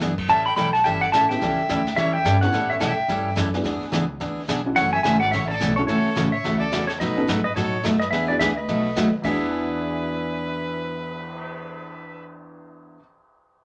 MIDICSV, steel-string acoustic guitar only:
0, 0, Header, 1, 2, 480
1, 0, Start_track
1, 0, Tempo, 279460
1, 505, Time_signature, 4, 2, 24, 8
1, 23431, End_track
2, 0, Start_track
2, 0, Title_t, "Steel-string acoustic guitar"
2, 0, Program_c, 0, 25
2, 5, Note_on_c, 0, 52, 65
2, 16, Note_on_c, 0, 59, 68
2, 24, Note_on_c, 0, 62, 78
2, 26, Note_on_c, 0, 68, 76
2, 201, Note_off_c, 0, 52, 0
2, 207, Note_off_c, 0, 59, 0
2, 211, Note_off_c, 0, 62, 0
2, 212, Note_off_c, 0, 68, 0
2, 483, Note_on_c, 0, 52, 57
2, 490, Note_on_c, 0, 55, 59
2, 494, Note_on_c, 0, 61, 57
2, 500, Note_on_c, 0, 64, 63
2, 507, Note_on_c, 0, 69, 65
2, 825, Note_off_c, 0, 52, 0
2, 828, Note_off_c, 0, 55, 0
2, 830, Note_off_c, 0, 61, 0
2, 833, Note_off_c, 0, 64, 0
2, 836, Note_off_c, 0, 69, 0
2, 969, Note_on_c, 0, 52, 78
2, 977, Note_on_c, 0, 61, 69
2, 978, Note_on_c, 0, 55, 74
2, 986, Note_on_c, 0, 64, 90
2, 987, Note_on_c, 0, 69, 86
2, 1163, Note_off_c, 0, 52, 0
2, 1167, Note_off_c, 0, 61, 0
2, 1168, Note_off_c, 0, 55, 0
2, 1172, Note_off_c, 0, 64, 0
2, 1172, Note_off_c, 0, 69, 0
2, 1456, Note_on_c, 0, 52, 62
2, 1461, Note_on_c, 0, 55, 56
2, 1466, Note_on_c, 0, 61, 58
2, 1472, Note_on_c, 0, 64, 64
2, 1475, Note_on_c, 0, 69, 62
2, 1791, Note_off_c, 0, 52, 0
2, 1794, Note_off_c, 0, 55, 0
2, 1796, Note_off_c, 0, 61, 0
2, 1799, Note_off_c, 0, 64, 0
2, 1801, Note_off_c, 0, 69, 0
2, 1944, Note_on_c, 0, 52, 69
2, 1944, Note_on_c, 0, 55, 70
2, 1955, Note_on_c, 0, 61, 76
2, 1957, Note_on_c, 0, 64, 73
2, 1965, Note_on_c, 0, 69, 86
2, 2131, Note_off_c, 0, 52, 0
2, 2131, Note_off_c, 0, 55, 0
2, 2137, Note_off_c, 0, 61, 0
2, 2138, Note_off_c, 0, 64, 0
2, 2142, Note_off_c, 0, 69, 0
2, 2425, Note_on_c, 0, 52, 62
2, 2432, Note_on_c, 0, 55, 59
2, 2436, Note_on_c, 0, 61, 60
2, 2442, Note_on_c, 0, 64, 68
2, 2451, Note_on_c, 0, 69, 66
2, 2756, Note_off_c, 0, 52, 0
2, 2759, Note_off_c, 0, 55, 0
2, 2762, Note_off_c, 0, 61, 0
2, 2765, Note_off_c, 0, 64, 0
2, 2769, Note_off_c, 0, 69, 0
2, 2904, Note_on_c, 0, 52, 74
2, 2910, Note_on_c, 0, 55, 73
2, 2916, Note_on_c, 0, 61, 71
2, 2921, Note_on_c, 0, 64, 74
2, 2924, Note_on_c, 0, 69, 85
2, 3092, Note_off_c, 0, 52, 0
2, 3094, Note_off_c, 0, 55, 0
2, 3097, Note_off_c, 0, 61, 0
2, 3100, Note_off_c, 0, 64, 0
2, 3101, Note_off_c, 0, 69, 0
2, 3384, Note_on_c, 0, 52, 56
2, 3384, Note_on_c, 0, 55, 59
2, 3398, Note_on_c, 0, 61, 66
2, 3398, Note_on_c, 0, 64, 67
2, 3402, Note_on_c, 0, 69, 58
2, 3716, Note_off_c, 0, 52, 0
2, 3716, Note_off_c, 0, 55, 0
2, 3723, Note_off_c, 0, 61, 0
2, 3723, Note_off_c, 0, 64, 0
2, 3725, Note_off_c, 0, 69, 0
2, 3861, Note_on_c, 0, 52, 69
2, 3867, Note_on_c, 0, 55, 76
2, 3875, Note_on_c, 0, 61, 80
2, 3880, Note_on_c, 0, 64, 74
2, 3883, Note_on_c, 0, 69, 73
2, 4050, Note_off_c, 0, 52, 0
2, 4053, Note_off_c, 0, 55, 0
2, 4057, Note_off_c, 0, 61, 0
2, 4059, Note_off_c, 0, 64, 0
2, 4061, Note_off_c, 0, 69, 0
2, 4338, Note_on_c, 0, 52, 68
2, 4343, Note_on_c, 0, 55, 58
2, 4348, Note_on_c, 0, 61, 70
2, 4354, Note_on_c, 0, 64, 65
2, 4360, Note_on_c, 0, 69, 66
2, 4673, Note_off_c, 0, 52, 0
2, 4676, Note_off_c, 0, 55, 0
2, 4678, Note_off_c, 0, 61, 0
2, 4681, Note_off_c, 0, 64, 0
2, 4684, Note_off_c, 0, 69, 0
2, 4810, Note_on_c, 0, 52, 71
2, 4814, Note_on_c, 0, 55, 78
2, 4817, Note_on_c, 0, 61, 82
2, 4824, Note_on_c, 0, 64, 85
2, 4824, Note_on_c, 0, 69, 86
2, 5005, Note_off_c, 0, 52, 0
2, 5007, Note_off_c, 0, 55, 0
2, 5008, Note_off_c, 0, 61, 0
2, 5012, Note_off_c, 0, 64, 0
2, 5012, Note_off_c, 0, 69, 0
2, 5301, Note_on_c, 0, 52, 64
2, 5307, Note_on_c, 0, 55, 68
2, 5312, Note_on_c, 0, 61, 64
2, 5313, Note_on_c, 0, 64, 61
2, 5322, Note_on_c, 0, 69, 72
2, 5635, Note_off_c, 0, 52, 0
2, 5638, Note_off_c, 0, 55, 0
2, 5640, Note_off_c, 0, 61, 0
2, 5641, Note_off_c, 0, 64, 0
2, 5645, Note_off_c, 0, 69, 0
2, 5766, Note_on_c, 0, 52, 65
2, 5768, Note_on_c, 0, 55, 70
2, 5773, Note_on_c, 0, 61, 79
2, 5780, Note_on_c, 0, 69, 80
2, 5782, Note_on_c, 0, 64, 90
2, 5963, Note_off_c, 0, 52, 0
2, 5964, Note_off_c, 0, 55, 0
2, 5967, Note_off_c, 0, 61, 0
2, 5970, Note_off_c, 0, 69, 0
2, 5971, Note_off_c, 0, 64, 0
2, 6248, Note_on_c, 0, 52, 60
2, 6256, Note_on_c, 0, 59, 59
2, 6265, Note_on_c, 0, 62, 58
2, 6271, Note_on_c, 0, 68, 68
2, 6589, Note_off_c, 0, 52, 0
2, 6593, Note_off_c, 0, 59, 0
2, 6597, Note_off_c, 0, 62, 0
2, 6601, Note_off_c, 0, 68, 0
2, 6729, Note_on_c, 0, 52, 84
2, 6740, Note_on_c, 0, 59, 71
2, 6748, Note_on_c, 0, 62, 83
2, 6757, Note_on_c, 0, 68, 84
2, 6925, Note_off_c, 0, 52, 0
2, 6931, Note_off_c, 0, 59, 0
2, 6935, Note_off_c, 0, 62, 0
2, 6939, Note_off_c, 0, 68, 0
2, 7215, Note_on_c, 0, 52, 60
2, 7225, Note_on_c, 0, 59, 60
2, 7228, Note_on_c, 0, 62, 67
2, 7233, Note_on_c, 0, 68, 59
2, 7553, Note_off_c, 0, 52, 0
2, 7558, Note_off_c, 0, 59, 0
2, 7559, Note_off_c, 0, 62, 0
2, 7562, Note_off_c, 0, 68, 0
2, 7692, Note_on_c, 0, 52, 63
2, 7702, Note_on_c, 0, 59, 68
2, 7714, Note_on_c, 0, 62, 77
2, 7714, Note_on_c, 0, 68, 83
2, 7887, Note_off_c, 0, 52, 0
2, 7892, Note_off_c, 0, 59, 0
2, 7898, Note_off_c, 0, 62, 0
2, 7898, Note_off_c, 0, 68, 0
2, 8178, Note_on_c, 0, 49, 60
2, 8183, Note_on_c, 0, 52, 58
2, 8185, Note_on_c, 0, 57, 65
2, 8192, Note_on_c, 0, 61, 65
2, 8197, Note_on_c, 0, 66, 71
2, 8515, Note_off_c, 0, 49, 0
2, 8518, Note_off_c, 0, 52, 0
2, 8518, Note_off_c, 0, 57, 0
2, 8522, Note_off_c, 0, 61, 0
2, 8524, Note_off_c, 0, 66, 0
2, 8654, Note_on_c, 0, 49, 71
2, 8659, Note_on_c, 0, 52, 77
2, 8667, Note_on_c, 0, 57, 75
2, 8676, Note_on_c, 0, 61, 81
2, 8680, Note_on_c, 0, 66, 75
2, 8849, Note_off_c, 0, 49, 0
2, 8851, Note_off_c, 0, 52, 0
2, 8855, Note_off_c, 0, 57, 0
2, 8860, Note_off_c, 0, 61, 0
2, 8862, Note_off_c, 0, 66, 0
2, 9141, Note_on_c, 0, 49, 60
2, 9144, Note_on_c, 0, 52, 54
2, 9155, Note_on_c, 0, 57, 60
2, 9159, Note_on_c, 0, 66, 70
2, 9164, Note_on_c, 0, 61, 67
2, 9477, Note_off_c, 0, 49, 0
2, 9479, Note_off_c, 0, 52, 0
2, 9484, Note_off_c, 0, 57, 0
2, 9486, Note_off_c, 0, 66, 0
2, 9489, Note_off_c, 0, 61, 0
2, 9615, Note_on_c, 0, 49, 70
2, 9626, Note_on_c, 0, 52, 74
2, 9632, Note_on_c, 0, 57, 78
2, 9632, Note_on_c, 0, 61, 69
2, 9633, Note_on_c, 0, 66, 86
2, 9810, Note_off_c, 0, 49, 0
2, 9815, Note_off_c, 0, 52, 0
2, 9818, Note_off_c, 0, 57, 0
2, 9818, Note_off_c, 0, 61, 0
2, 9819, Note_off_c, 0, 66, 0
2, 10104, Note_on_c, 0, 49, 63
2, 10104, Note_on_c, 0, 52, 56
2, 10115, Note_on_c, 0, 57, 70
2, 10120, Note_on_c, 0, 61, 59
2, 10129, Note_on_c, 0, 66, 71
2, 10439, Note_off_c, 0, 49, 0
2, 10439, Note_off_c, 0, 52, 0
2, 10445, Note_off_c, 0, 57, 0
2, 10447, Note_off_c, 0, 61, 0
2, 10451, Note_off_c, 0, 66, 0
2, 10575, Note_on_c, 0, 49, 78
2, 10588, Note_on_c, 0, 52, 83
2, 10590, Note_on_c, 0, 57, 75
2, 10594, Note_on_c, 0, 66, 76
2, 10596, Note_on_c, 0, 61, 87
2, 10770, Note_off_c, 0, 49, 0
2, 10777, Note_off_c, 0, 52, 0
2, 10778, Note_off_c, 0, 57, 0
2, 10780, Note_off_c, 0, 66, 0
2, 10781, Note_off_c, 0, 61, 0
2, 11064, Note_on_c, 0, 49, 57
2, 11066, Note_on_c, 0, 52, 63
2, 11074, Note_on_c, 0, 57, 60
2, 11077, Note_on_c, 0, 66, 62
2, 11078, Note_on_c, 0, 61, 73
2, 11400, Note_off_c, 0, 49, 0
2, 11401, Note_off_c, 0, 52, 0
2, 11405, Note_off_c, 0, 57, 0
2, 11406, Note_off_c, 0, 66, 0
2, 11407, Note_off_c, 0, 61, 0
2, 11542, Note_on_c, 0, 49, 76
2, 11547, Note_on_c, 0, 52, 76
2, 11555, Note_on_c, 0, 57, 72
2, 11562, Note_on_c, 0, 61, 73
2, 11567, Note_on_c, 0, 66, 83
2, 11735, Note_off_c, 0, 49, 0
2, 11737, Note_off_c, 0, 52, 0
2, 11741, Note_off_c, 0, 57, 0
2, 11744, Note_off_c, 0, 61, 0
2, 11747, Note_off_c, 0, 66, 0
2, 12027, Note_on_c, 0, 47, 61
2, 12036, Note_on_c, 0, 54, 56
2, 12045, Note_on_c, 0, 57, 68
2, 12047, Note_on_c, 0, 63, 63
2, 12055, Note_on_c, 0, 66, 70
2, 12362, Note_off_c, 0, 47, 0
2, 12366, Note_off_c, 0, 54, 0
2, 12370, Note_off_c, 0, 57, 0
2, 12371, Note_off_c, 0, 63, 0
2, 12376, Note_off_c, 0, 66, 0
2, 12496, Note_on_c, 0, 47, 77
2, 12509, Note_on_c, 0, 54, 80
2, 12512, Note_on_c, 0, 57, 90
2, 12516, Note_on_c, 0, 63, 78
2, 12525, Note_on_c, 0, 66, 88
2, 12692, Note_off_c, 0, 47, 0
2, 12698, Note_off_c, 0, 54, 0
2, 12700, Note_off_c, 0, 57, 0
2, 12702, Note_off_c, 0, 63, 0
2, 12706, Note_off_c, 0, 66, 0
2, 12989, Note_on_c, 0, 47, 56
2, 12993, Note_on_c, 0, 54, 62
2, 12997, Note_on_c, 0, 57, 65
2, 13008, Note_on_c, 0, 63, 62
2, 13013, Note_on_c, 0, 66, 67
2, 13323, Note_off_c, 0, 47, 0
2, 13325, Note_off_c, 0, 54, 0
2, 13327, Note_off_c, 0, 57, 0
2, 13332, Note_off_c, 0, 63, 0
2, 13335, Note_off_c, 0, 66, 0
2, 13458, Note_on_c, 0, 47, 70
2, 13469, Note_on_c, 0, 54, 70
2, 13473, Note_on_c, 0, 57, 74
2, 13478, Note_on_c, 0, 63, 77
2, 13486, Note_on_c, 0, 66, 82
2, 13653, Note_off_c, 0, 47, 0
2, 13658, Note_off_c, 0, 54, 0
2, 13661, Note_off_c, 0, 57, 0
2, 13663, Note_off_c, 0, 63, 0
2, 13667, Note_off_c, 0, 66, 0
2, 13951, Note_on_c, 0, 52, 59
2, 13961, Note_on_c, 0, 59, 69
2, 13967, Note_on_c, 0, 62, 59
2, 13968, Note_on_c, 0, 68, 59
2, 14283, Note_off_c, 0, 52, 0
2, 14289, Note_off_c, 0, 59, 0
2, 14292, Note_off_c, 0, 62, 0
2, 14292, Note_off_c, 0, 68, 0
2, 14435, Note_on_c, 0, 52, 74
2, 14438, Note_on_c, 0, 59, 81
2, 14446, Note_on_c, 0, 62, 84
2, 14455, Note_on_c, 0, 68, 89
2, 14621, Note_off_c, 0, 52, 0
2, 14623, Note_off_c, 0, 59, 0
2, 14627, Note_off_c, 0, 62, 0
2, 14631, Note_off_c, 0, 68, 0
2, 14919, Note_on_c, 0, 47, 65
2, 14921, Note_on_c, 0, 54, 58
2, 14929, Note_on_c, 0, 57, 66
2, 14933, Note_on_c, 0, 63, 63
2, 14939, Note_on_c, 0, 66, 73
2, 15247, Note_off_c, 0, 47, 0
2, 15248, Note_off_c, 0, 54, 0
2, 15252, Note_off_c, 0, 57, 0
2, 15255, Note_off_c, 0, 63, 0
2, 15258, Note_off_c, 0, 66, 0
2, 15388, Note_on_c, 0, 47, 78
2, 15399, Note_on_c, 0, 54, 80
2, 15404, Note_on_c, 0, 57, 85
2, 15405, Note_on_c, 0, 63, 72
2, 15413, Note_on_c, 0, 66, 79
2, 15578, Note_off_c, 0, 47, 0
2, 15583, Note_off_c, 0, 54, 0
2, 15585, Note_off_c, 0, 57, 0
2, 15586, Note_off_c, 0, 63, 0
2, 15590, Note_off_c, 0, 66, 0
2, 15863, Note_on_c, 0, 52, 75
2, 15887, Note_on_c, 0, 59, 80
2, 15903, Note_on_c, 0, 62, 70
2, 15921, Note_on_c, 0, 68, 81
2, 22280, Note_off_c, 0, 52, 0
2, 22292, Note_off_c, 0, 59, 0
2, 22300, Note_off_c, 0, 62, 0
2, 22309, Note_off_c, 0, 68, 0
2, 23431, End_track
0, 0, End_of_file